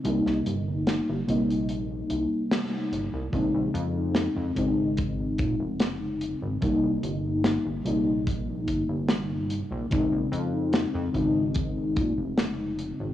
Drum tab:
HH |x-x-x-xxx-x-x-x-|x-x-x-x-x-x-x-x-|x-x-x-x-x-x-x-x-|x-x-x-x-x-x-x-x-|
SD |-o--o-------o---|----o-------o---|----o-------o---|----o-------o---|
BD |----------------|o-----o-o-o-----|o-------o-o-----|o-----o-o-o-----|